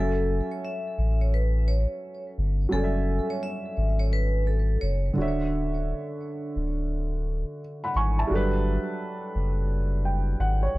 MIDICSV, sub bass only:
0, 0, Header, 1, 2, 480
1, 0, Start_track
1, 0, Key_signature, 3, "minor"
1, 0, Tempo, 697674
1, 1868, Time_signature, 4, 2, 24, 8
1, 7419, End_track
2, 0, Start_track
2, 0, Title_t, "Sub bass"
2, 0, Program_c, 0, 38
2, 0, Note_on_c, 0, 30, 104
2, 283, Note_off_c, 0, 30, 0
2, 675, Note_on_c, 0, 33, 82
2, 1281, Note_off_c, 0, 33, 0
2, 1638, Note_on_c, 0, 31, 86
2, 1833, Note_off_c, 0, 31, 0
2, 1875, Note_on_c, 0, 30, 96
2, 2202, Note_off_c, 0, 30, 0
2, 2597, Note_on_c, 0, 32, 87
2, 3285, Note_off_c, 0, 32, 0
2, 3318, Note_on_c, 0, 30, 87
2, 3514, Note_off_c, 0, 30, 0
2, 3559, Note_on_c, 0, 26, 86
2, 4084, Note_off_c, 0, 26, 0
2, 4514, Note_on_c, 0, 26, 96
2, 5120, Note_off_c, 0, 26, 0
2, 5471, Note_on_c, 0, 32, 82
2, 5670, Note_off_c, 0, 32, 0
2, 5714, Note_on_c, 0, 31, 110
2, 6042, Note_off_c, 0, 31, 0
2, 6435, Note_on_c, 0, 30, 83
2, 7124, Note_off_c, 0, 30, 0
2, 7152, Note_on_c, 0, 32, 91
2, 7350, Note_off_c, 0, 32, 0
2, 7392, Note_on_c, 0, 31, 89
2, 7419, Note_off_c, 0, 31, 0
2, 7419, End_track
0, 0, End_of_file